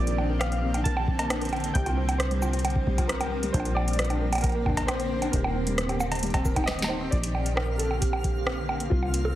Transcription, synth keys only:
0.00 0.41 D5 loud
0.39 0.86 F5 loud
0.84 1.77 A5 loud
1.74 2.20 G5 loud
2.18 3.11 C5 loud
3.08 3.50 A#4 loud
3.53 3.76 C5 loud
3.75 4.39 D5 loud
4.42 4.89 A#4 medium
4.87 5.34 C5 loud
5.32 6.63 A#4 medium
6.66 6.87 D#5 loud
6.88 7.10 C5 loud
7.11 7.58 D5 loud
7.56 7.79 A#4 medium
7.78 8.02 A4 medium
8.01 8.64 G4 medium
8.90 9.35 F4 loud

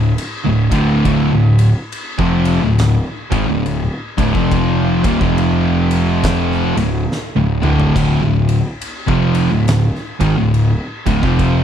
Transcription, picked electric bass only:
0.00 0.17 D1 medium
0.47 0.70 D1 medium
0.72 1.03 D1 loud
1.06 1.30 D1 loud
1.33 1.73 D1 medium
2.19 2.59 F1 loud
2.62 3.02 D1 medium
3.32 3.47 G#1 loud
3.48 3.88 D1 medium
4.18 4.33 D1 loud
4.35 5.00 F1 loud
5.04 5.20 D#1 loud
5.21 6.72 F1 loud
6.77 7.07 D1 medium
7.37 7.61 D1 medium
7.63 7.93 D1 medium
7.96 8.20 D1 medium
8.22 8.62 D1 medium
9.09 9.48 F1 loud
9.51 9.91 D1 medium
10.21 10.36 G#1 loud
10.38 10.77 D1 medium
11.07 11.22 D1 loud
11.23 11.64 F1 loud

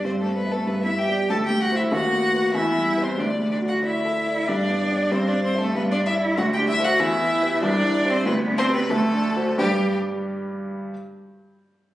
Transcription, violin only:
0.05 0.11 C5 medium
0.21 0.35 A4 medium
0.36 0.53 B4 medium
0.52 0.68 A4 medium
0.67 0.83 B4 medium
0.83 1.00 E5 medium
0.98 1.29 G5 medium
1.30 1.36 A5 medium
1.46 1.62 G5 medium
1.61 1.76 F#5 loud
1.76 1.83 E5 medium
1.92 2.53 F#5 medium
2.54 3.05 E5 medium
3.03 3.21 C5 medium
3.19 3.51 D5 medium
3.51 3.58 D5 medium
3.68 3.74 F#5 medium
3.84 4.50 E5 medium
4.48 5.13 D5 medium
5.11 5.29 C5 medium
5.28 5.44 D5 medium
5.45 5.60 C5 medium
5.60 5.75 A4 medium
5.76 5.82 B4 medium
5.92 5.98 D5 medium
6.06 6.14 E5 loud
6.37 6.44 F#5 medium
6.53 6.59 G5 loud
6.68 6.86 E5 loud
6.84 7.01 F#5 loud
6.99 7.62 E5 loud
7.63 8.12 D5 loud
8.10 8.25 C5 loud
8.26 8.34 B4 loud
8.58 8.65 C5 loud
8.74 8.91 B4 loud
8.90 9.58 A4 loud
9.58 9.95 G4 loud

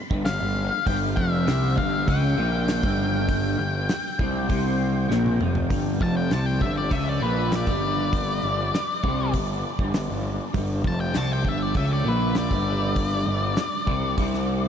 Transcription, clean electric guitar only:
0.11 0.24 G2 loud
0.25 0.40 G2 medium
0.41 0.65 G2 medium
0.86 1.16 G2 loud
1.16 1.46 F2 loud
1.47 1.76 C3 loud
1.76 2.06 G2 loud
2.07 2.37 C#3 loud
2.38 2.82 A#2 loud
2.83 3.58 G2 loud
3.59 3.83 G2 medium
4.21 4.48 C3 loud
4.49 5.09 C3 loud
5.09 5.39 A#2 loud
5.40 5.69 F2 loud
5.70 6.00 G2 loud
6.00 6.30 F2 loud
6.31 6.60 C3 loud
6.60 6.90 G2 loud
6.91 7.20 C#3 loud
7.21 7.66 A#2 medium
7.67 8.42 G2 loud
8.43 8.67 G2 medium
9.04 9.33 C3 loud
9.34 9.58 G2 medium
9.80 9.93 G2 loud
9.95 10.09 G2 medium
10.10 10.34 G2 medium
10.54 10.84 G2 loud
10.84 11.14 F2 loud
11.14 11.44 C3 loud
11.44 11.74 G2 loud
11.75 12.04 C#3 loud
12.04 12.50 A#2 loud
12.50 13.25 G2 medium
13.26 13.51 G2 medium
13.88 14.16 C3 loud
14.17 14.68 C3 loud

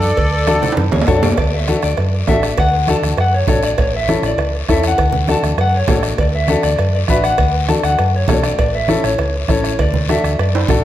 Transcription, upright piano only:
0.47 0.69 D4 medium
0.47 0.69 F#4 medium
0.47 0.69 A4 loud
1.07 1.28 D4 medium
1.07 1.29 F#4 medium
1.07 1.29 A4 loud
1.68 1.89 D4 medium
1.68 1.89 F#4 medium
1.68 1.89 A4 medium
2.28 2.49 D4 medium
2.28 2.49 F#4 medium
2.28 2.49 A4 medium
2.88 3.09 D4 medium
2.88 3.09 F#4 medium
2.88 3.09 A4 medium
3.48 3.69 D4 medium
3.48 3.69 F#4 medium
3.48 3.69 A4 medium
4.09 4.29 C#4 medium
4.09 4.30 E4 medium
4.09 4.30 A4 medium
4.69 4.90 C#4 medium
4.69 4.90 E4 medium
4.69 4.90 A4 medium
5.28 5.49 D4 medium
5.28 5.50 F#4 medium
5.28 5.50 A4 medium
5.88 6.09 D4 medium
5.88 6.09 F#4 medium
5.88 6.10 A4 medium
6.48 6.70 D4 medium
6.48 6.70 F#4 medium
6.48 6.70 A4 medium
7.09 7.30 D4 medium
7.09 7.30 F#4 medium
7.09 7.30 B4 medium
7.69 7.90 D4 medium
7.69 7.90 F#4 medium
7.69 7.90 A4 medium
8.28 8.50 D4 medium
8.28 8.50 F#4 medium
8.28 8.50 A4 medium
8.89 9.10 C#4 medium
8.89 9.10 E4 medium
8.89 9.10 A4 medium
9.49 9.70 C#4 medium
9.49 9.70 E4 medium
9.49 9.71 A4 medium
10.09 10.30 D4 medium
10.09 10.30 F#4 medium
10.09 10.31 A4 medium
10.68 10.84 D4 medium
10.68 10.84 F#4 medium
10.68 10.84 A4 medium

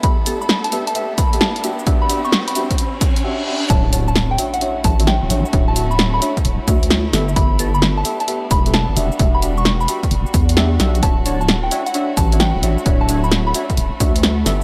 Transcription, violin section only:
0.00 3.21 B3 medium
0.00 3.21 D4 medium
0.00 1.60 E4 medium
0.00 1.62 A4 medium
1.64 3.22 F#4 medium
1.64 3.23 G4 medium
3.70 8.93 A3 medium
3.70 7.10 C#4 medium
3.70 8.93 E4 medium
3.70 7.10 F#4 medium
7.14 10.99 B3 medium
7.14 10.99 D4 medium
8.97 11.01 G3 medium
8.97 14.42 F#4 medium
11.02 14.64 A3 medium
11.02 14.43 C#4 medium
11.02 14.64 E4 medium
14.46 14.64 B3 medium
14.46 14.64 D4 medium

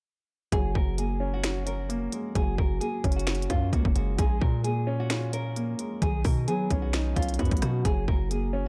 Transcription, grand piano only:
0.53 1.67 F#3 medium
0.98 1.88 A#3 medium
1.20 1.65 C#4 medium
1.44 2.59 F#4 medium
1.66 2.81 C#4 medium
1.89 2.79 A#3 medium
2.13 3.27 G#3 medium
2.35 3.50 F#3 medium
2.81 3.71 A#3 medium
3.05 3.49 C#4 medium
3.27 4.19 F#4 medium
3.50 4.19 C#4 medium
3.73 4.19 A#3 medium
3.96 4.17 G#3 medium
4.19 5.33 G#3 medium
4.65 5.55 A#3 medium
4.87 5.32 C#4 loud
5.11 6.02 F4 medium
5.33 6.02 C#4 medium
5.56 6.02 A#3 medium
5.79 6.02 G#3 medium
6.02 7.16 D#3 medium
6.48 7.37 B3 medium
6.71 7.15 C#4 loud
6.94 7.85 D#4 medium
7.16 7.85 C#4 medium
7.39 7.85 B3 medium
7.63 7.84 F#3 medium
7.86 8.68 F#3 medium
8.31 8.68 A#3 medium
8.53 8.68 C#4 loud

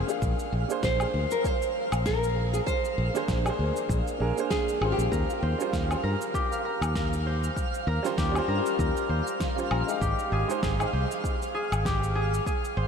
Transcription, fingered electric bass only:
0.22 0.33 A#1 loud
0.53 0.64 A#1 medium
0.83 1.04 A#1 medium
1.14 1.25 D2 medium
1.92 2.59 A#1 medium
2.98 3.09 A#1 medium
3.28 3.49 A#1 medium
3.59 3.70 D2 medium
3.89 4.00 A#1 loud
4.20 4.31 A#1 medium
4.81 4.92 G#1 medium
4.98 5.07 A#1 medium
5.12 5.23 D#2 loud
5.43 5.53 D#2 medium
5.73 5.94 D#2 medium
6.04 6.15 G2 medium
6.81 7.49 D#2 medium
7.87 7.98 D#2 medium
8.18 8.39 D#2 medium
8.48 8.59 G2 medium
8.79 8.90 D#2 loud
9.09 9.21 D#2 medium
9.71 9.82 A#1 medium
10.01 10.12 G#1 loud
10.32 10.43 G#1 medium
10.63 10.84 G#1 medium
10.93 11.04 C2 medium
11.72 12.39 G#1 medium
12.77 12.88 G#1 medium

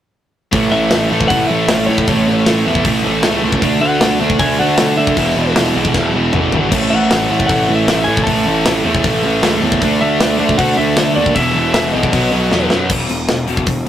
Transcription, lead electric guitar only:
0.72 1.08 E5 loud
1.28 1.47 F#5 loud
1.47 1.88 E5 loud
1.86 2.41 C#5 medium
3.81 4.17 F#5 loud
4.39 4.58 G#5 loud
4.59 4.97 F#5 medium
4.97 5.52 E5 medium
6.90 7.45 F#5 medium
7.46 7.75 F#5 medium
7.76 8.07 E5 medium
8.04 8.23 G#5 loud
8.24 8.79 A5 loud
10.01 10.61 E5 loud
10.58 10.76 F#5 loud
10.77 11.13 E5 medium
11.16 11.35 D5 loud
11.35 11.72 E5 loud
11.74 11.92 E5 medium
11.92 12.70 D#5 medium

